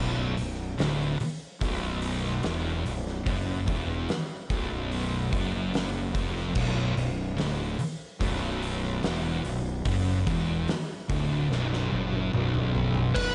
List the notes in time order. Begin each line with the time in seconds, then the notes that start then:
Already playing: B0 B1
0.37 B0 B1, open hi-hat
0.79 D1 D2, snare, open hi-hat
1.20 muted distorted electric guitar stroke, muted fingered electric bass stroke, open hi-hat
1.61 B0 B1, kick, open hi-hat
2.02 open hi-hat
2.24 snare
2.43 E1 E2, snare, open hi-hat
2.86 B0 B1, open hi-hat
3.07 snare
3.26 F#1 F#2, kick, open hi-hat
3.67 E1 E2, kick, open hi-hat
4.09 snare, open hi-hat
4.50 B0 B1, kick, open hi-hat
4.92 open hi-hat
5.32 F#1 F#2, kick, open hi-hat
5.74 snare, open hi-hat
6.15 F1 F2, kick, open hi-hat
6.37 snare
6.55 B0 B1, kick, crash
6.96 B0 B1, open hi-hat
7.37 D1 D2, snare, open hi-hat
7.79 muted distorted electric guitar stroke, muted fingered electric bass stroke, open hi-hat
8.20 B0 B1, kick, open hi-hat
8.62 open hi-hat
8.84 snare
9.03 E1 E2, snare, open hi-hat
9.44 B0 B1, open hi-hat
9.85 F#1 F#2, kick, open hi-hat
10.27 E1 E2, kick, open hi-hat
10.68 snare, open hi-hat
11.09 D1 D2, kick, open hi-hat
11.50 B0 B1, snare
11.73 snare
11.92 F#1 F#2, high tom
12.13 high tom
12.33 B0 B1, mid tom
12.54 mid tom
12.75 floor tom
12.94 floor tom
13.15 B0 B1 B4, kick, crash